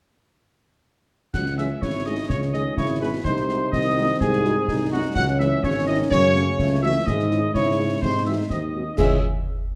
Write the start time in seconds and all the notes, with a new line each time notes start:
1.34 C#2 F#3 F#5 F#6, concert bass drum, snare, crash
1.46 snare
1.58 E3 G#3 C#4 G#4 E5 E6, snare
1.82 G#1 C#3 E4 C#5 C#6, concert bass drum, snare
2.05 D#3 G#3 C#4 G#4 D#5 D#6
2.29 C#2 C#3 C#4 C#5 C#6, concert bass drum, snare
2.42 snare
2.53 D#3 G#3 C#4 G#4 D#5 D#6, snare
2.77 G#1 C#3 E4 C#5 C#6, concert bass drum, snare
3.01 B2 G#3 C#4 G#4 B4 B5
3.24 C2 C3 D#4 C5 C6, concert bass drum, snare
3.37 snare
3.49 G#3 D#4 F#4, snare
3.72 C2 D#3 C4 D#5 D#6, concert bass drum, snare
3.97 G#3 D#4 F#4
4.20 C2 G#2 G#4 G#5, concert bass drum, snare
4.33 snare
4.44 G#3 D#4 F#4, snare
4.68 C2 D#4, concert bass drum, snare
4.92 F#2 G#3 D#4 F#4 F#5
5.15 C#2 F#3 C#4 F#5 F#6, concert bass drum, snare, crash
5.28 snare
5.39 E3 G#3 C#4 E4 E5 E6, snare
5.63 G#1 C#3 C#4 C#5 C#6, concert bass drum, snare
5.87 D#3 G#3 C#4 E4 D#5 D#6
6.10 F#2 C#3 C#5 C#6, concert bass drum, snare
6.23 snare
6.35 A3 C#4 F#4, snare
6.59 C#2 A3, concert bass drum, snare
6.83 E3 A3 C#4 F#4 E5 E6
7.07 G#2 D#3 G#3 D#5 D#6, concert bass drum, snare
7.19 snare
7.31 G#3 C#4 E4, snare
7.54 G#2 C#3 E4 C#5 C#6, concert bass drum, snare
7.78 G#3 C#4 E4
8.02 G#2 C3 D#4 C5 C6, concert bass drum, snare
8.26 E3 G#3 C4 F#4 E5 E6
8.50 D#2 D#3 C4 D#5 D#6, concert bass drum, snare
8.74 G#3 C4 F#4
8.97 C#2 C#3 E3 G#3 C#4 G#4 E5 E6, concert bass drum, snare, crash